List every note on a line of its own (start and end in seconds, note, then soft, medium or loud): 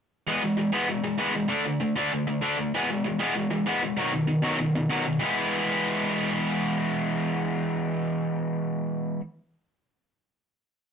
0.28 0.41 E3 medium
0.28 0.42 G#3 medium
0.28 0.42 B3 loud
0.42 0.56 E3 medium
0.42 0.56 G#3 medium
0.58 0.71 E3 medium
0.58 0.72 G#3 medium
0.73 0.87 E3 medium
0.73 0.87 G#3 medium
0.73 0.88 B3 loud
0.88 1.02 E3 medium
0.88 1.02 G#3 medium
1.04 1.17 E3 medium
1.04 1.18 G#3 medium
1.18 1.33 E3 medium
1.18 1.34 G#3 loud
1.18 1.34 B3 loud
1.35 1.48 E3 medium
1.35 1.49 G#3 medium
1.49 1.64 D3 medium
1.49 1.64 A3 loud
1.49 1.65 D4 loud
1.66 1.79 D3 medium
1.66 1.79 A3 medium
1.80 1.94 D3 medium
1.80 1.94 A3 medium
1.96 2.10 D3 medium
1.96 2.11 A3 medium
1.96 2.11 D4 loud
2.12 2.26 D3 medium
2.12 2.26 A3 medium
2.27 2.40 D3 medium
2.27 2.41 A3 medium
2.41 2.56 D3 loud
2.41 2.57 A3 medium
2.41 2.57 D4 loud
2.57 2.72 D3 medium
2.57 2.72 A3 medium
2.75 2.88 E3 medium
2.75 2.89 G#3 loud
2.75 2.89 B3 loud
2.90 3.03 E3 medium
2.90 3.04 G#3 medium
3.06 3.19 E3 medium
3.06 3.19 G#3 medium
3.20 3.34 E3 medium
3.20 3.34 G#3 loud
3.20 3.35 B3 medium
3.35 3.49 E3 medium
3.35 3.49 G#3 medium
3.51 3.65 E3 medium
3.51 3.65 G#3 medium
3.66 3.81 E3 medium
3.66 3.81 G#3 loud
3.66 3.82 B3 loud
3.82 3.96 E3 medium
3.82 3.96 G#3 medium
3.97 4.11 B2 medium
3.97 4.12 D#3 loud
3.97 4.12 F#3 loud
4.12 4.26 B2 medium
4.12 4.27 D#3 medium
4.27 4.41 B2 medium
4.27 4.42 D#3 medium
4.42 4.58 B2 medium
4.42 4.58 D#3 medium
4.42 4.58 F#3 loud
4.59 4.73 B2 medium
4.59 4.73 D#3 medium
4.75 4.88 B2 medium
4.75 4.89 D#3 medium
4.89 5.05 B2 medium
4.89 5.05 D#3 loud
4.89 5.05 F#3 loud
5.06 5.20 B2 medium
5.06 5.19 D#3 medium
5.19 9.20 E3 loud
5.19 9.20 G#3 loud
5.19 9.21 B3 loud
5.19 9.21 E4 loud